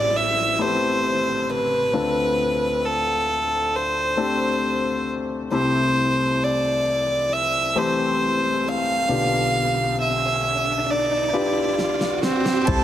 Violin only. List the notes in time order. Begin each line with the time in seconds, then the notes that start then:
Already playing: D5
0.16 E5
0.61 C5
1.50 B4
2.85 A4
3.76 C5
5.54 C5
6.44 D5
7.33 E5
7.78 C5
8.68 F5
10.01 E5
10.91 D5
12.24 C4